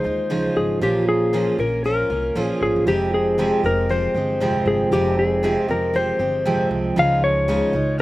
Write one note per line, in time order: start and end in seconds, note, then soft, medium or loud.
0.00 0.30 F4 soft
0.00 0.59 C5 medium
0.05 0.47 D#2 medium
0.05 0.29 G#3 soft
0.05 0.30 D#4 soft
0.30 0.81 C#3 medium
0.30 0.82 F3 medium
0.30 0.82 G#3 medium
0.30 0.82 D#4 medium
0.30 0.83 F4 medium
0.56 0.77 G#1 medium
0.56 0.83 G#4 medium
0.81 1.45 A#1 medium
0.81 1.32 A#2 medium
0.81 1.33 F3 medium
0.81 1.33 A#3 medium
0.81 1.33 C#4 medium
0.81 1.34 F4 medium
0.81 1.06 G4 medium
1.09 1.56 G#4 medium
1.33 1.59 A#2 medium
1.33 1.59 F3 medium
1.33 1.59 A#3 medium
1.33 1.59 C#4 medium
1.33 1.57 F4 medium
1.58 2.01 A#1 medium
1.58 1.84 A#3 soft
1.58 1.84 C#4 soft
1.58 1.84 F4 soft
1.58 1.83 A#4 medium
1.84 2.10 F3 soft
1.84 2.10 A#3 medium
1.84 2.10 C#4 medium
1.84 2.09 F4 medium
1.84 2.44 A#4 medium
2.10 2.31 C2 medium
2.10 2.35 A#3 soft
2.10 2.36 C#4 soft
2.10 2.36 F4 soft
2.35 2.48 A#1 medium
2.35 2.86 A#2 medium
2.35 2.87 F3 medium
2.35 2.87 A#3 medium
2.35 2.87 C#4 medium
2.35 2.88 F4 medium
2.44 2.63 G#4 medium
2.61 2.74 G#1 medium
2.61 2.88 G#4 medium
2.76 2.85 A#1 medium
2.87 3.50 F1 medium
2.87 3.37 F2 medium
2.87 3.37 C3 medium
2.87 3.38 F3 medium
2.87 3.39 G#3 medium
2.87 3.38 C4 medium
2.87 3.11 G4 medium
2.87 3.38 G4 medium
3.14 3.65 G#4 medium
3.38 3.64 F2 medium
3.38 3.64 C3 medium
3.38 3.64 F3 medium
3.38 3.64 G#3 medium
3.38 3.64 C4 medium
3.38 3.63 G4 medium
3.64 4.06 F1 medium
3.64 3.88 F3 soft
3.64 3.89 G#3 soft
3.64 3.90 C4 soft
3.64 3.90 G4 soft
3.64 3.91 A#4 medium
3.89 4.15 F3 medium
3.89 4.15 G#3 medium
3.89 4.15 C4 medium
3.89 4.14 G4 medium
3.89 4.69 C5 medium
4.14 4.57 G1 medium
4.14 4.40 F3 soft
4.14 4.40 G#3 soft
4.14 4.41 C4 soft
4.14 4.41 G4 soft
4.40 4.91 F2 medium
4.40 4.91 C3 medium
4.40 4.92 F3 medium
4.40 4.93 G#3 medium
4.40 4.92 C4 medium
4.40 4.93 G4 medium
4.66 4.87 G1 medium
4.66 4.91 G#4 medium
4.91 5.55 F1 medium
4.91 5.42 F2 medium
4.91 5.42 C3 medium
4.91 5.43 F3 medium
4.91 5.44 G#3 medium
4.91 5.43 C4 medium
4.91 5.19 G4 medium
4.91 5.43 G4 medium
5.19 5.66 G#4 medium
5.43 5.69 F2 medium
5.43 5.69 C3 medium
5.43 5.69 F3 medium
5.43 5.69 G#3 medium
5.43 5.68 C4 medium
5.43 5.67 G4 medium
5.68 6.11 F1 medium
5.68 5.92 F3 soft
5.68 5.94 G#3 soft
5.68 5.94 C4 soft
5.68 5.94 G4 soft
5.68 5.96 A#4 medium
5.94 6.20 F3 medium
5.94 6.20 G#3 medium
5.94 6.19 C4 medium
5.94 6.18 G4 medium
5.94 6.68 C5 medium
6.19 6.62 G1 medium
6.19 6.45 F3 soft
6.19 6.45 G#3 soft
6.19 6.45 C4 soft
6.19 6.45 G4 soft
6.45 6.97 F2 medium
6.45 6.96 C3 medium
6.45 6.96 F3 medium
6.45 6.97 G#3 medium
6.45 6.97 C4 medium
6.45 6.97 G4 medium
6.71 6.92 C2 medium
6.96 7.60 C#2 medium
6.96 7.47 C#3 medium
6.96 7.48 F3 medium
6.96 7.48 G#3 medium
6.96 7.48 D#4 medium
6.96 7.49 F4 medium
6.96 7.22 F5 loud
7.24 7.96 C#5 loud
7.48 7.73 C#3 medium
7.48 7.74 F3 medium
7.48 7.74 G#3 medium
7.48 7.73 D#4 medium
7.48 7.72 F4 medium
7.73 8.02 C#2 medium
7.73 7.98 G#3 soft
7.73 7.99 D#4 soft
7.73 7.99 F4 soft
7.99 8.02 F3 medium